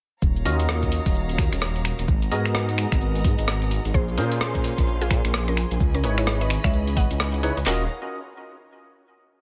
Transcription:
0.22 D#1 C#5 F5 A#5, kick, shaker
0.36 shaker
0.45 D#2 C#4 F4 F#4 A#4 D#5, open hi-hat
0.60 closed hi-hat, shaker
0.69 cross-stick, shaker
0.83 kick, closed hi-hat, shaker
0.92 open hi-hat
1.06 D#1, kick, closed hi-hat, shaker
1.15 shaker
1.29 closed hi-hat, shaker
1.38 D#2, finger snap, kick, open hi-hat
1.52 D#1, finger snap, closed hi-hat, shaker
1.62 cross-stick, shaker
1.76 closed hi-hat, shaker
1.85 finger snap, open hi-hat
1.99 D#1, closed hi-hat, shaker
2.08 G#1 B3 D#5 F#5 A#5, kick, shaker
2.22 closed hi-hat, shaker
2.31 G#2 B3 F#4 G#4 A#4 D#5, open hi-hat
2.46 finger snap, closed hi-hat, shaker
2.55 cross-stick, shaker
2.69 closed hi-hat, shaker
2.78 finger snap, open hi-hat
2.92 G#1, finger snap, kick, closed hi-hat, shaker
3.01 shaker
3.15 open hi-hat, shaker
3.24 G#2, kick, open hi-hat
3.39 G#1, closed hi-hat, shaker
3.48 cross-stick, shaker
3.62 closed hi-hat, shaker
3.71 open hi-hat
3.85 G#1, closed hi-hat, shaker
3.94 A#1 C#4 G#4 C5 F5 G#5 C6, kick, shaker
4.08 shaker
4.17 A#2 C#4 F4 G#4 A#4 C5, open hi-hat
4.32 closed hi-hat, shaker
4.41 cross-stick, shaker
4.55 kick, closed hi-hat, shaker
4.64 open hi-hat
4.78 A#1, kick, closed hi-hat, shaker
4.87 shaker
5.01 F4 G#4, closed hi-hat, shaker
5.11 A#2, finger snap, kick, open hi-hat
5.25 A#1, finger snap, closed hi-hat, shaker
5.34 cross-stick, shaker
5.48 C#4 A#4, closed hi-hat, shaker
5.57 finger snap, open hi-hat
5.71 A#1, closed hi-hat, shaker
5.80 C#2 D#5 B5, kick, shaker
5.95 C#4 A#4, closed hi-hat, shaker
6.04 G#1 D#4 E4 G#4 B4 C#5, open hi-hat
6.18 E4 C#5, finger snap, closed hi-hat, shaker
6.27 cross-stick, shaker
6.41 B4 D#5, closed hi-hat, shaker
6.50 finger snap, open hi-hat
6.64 C#2 C#5 E5, finger snap, kick, closed hi-hat, shaker
6.73 shaker
6.87 open hi-hat, shaker
6.97 G#1 D#5 F#5, kick, open hi-hat
7.11 C#2, closed hi-hat, shaker
7.20 cross-stick, shaker
7.34 closed hi-hat, shaker
7.43 D#4 E4 G#4 B4 C#5, open hi-hat
7.57 C#2, closed hi-hat, shaker
7.66 D#1 C#4 F4 F#4 A#4 C#5 D#5 F5 F#5 A#5, snare, clap

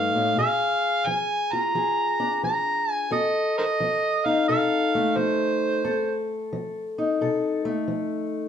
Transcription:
Already playing: G2 A3 D#4 A4 F5
0.15 A2
0.37 A#2 G#4 F5
1.06 F3 G#5
1.53 F4 A#5
1.75 F3 G#4
2.20 D4
2.43 F3 A#5
2.91 G#5
3.11 F2 A4 D#5
3.58 A#4 C5 D#5
3.80 F3
4.26 D#4 F5
4.48 C3 A4 F5
4.95 A3
5.16 F3 C5
5.84 F2 A4
6.53 F3
6.98 D#4
7.21 C3 A4
7.65 A3
7.88 F3

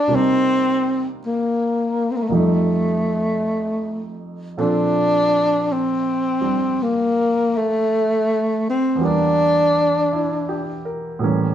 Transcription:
Already playing: A#2 F3 C4 D4 A4
0.08 C3 G3 A#3 D4
0.13 C4 D#4
1.26 A#3
2.11 C4
2.17 A#3
2.22 A3
2.28 F2 F3 G3 A#3
2.33 A3 D#4
4.57 A#2 F3 C4 D4 A4
5.72 C4
6.41 G3 D4
6.83 A#3
7.57 A3
8.70 C4
8.95 E2 E3
9.01 G3 A#3 D4
9.06 D4
10.12 E4
10.49 G4
10.85 A#4
11.19 A2 E3 G3 A#3
11.24 C#4

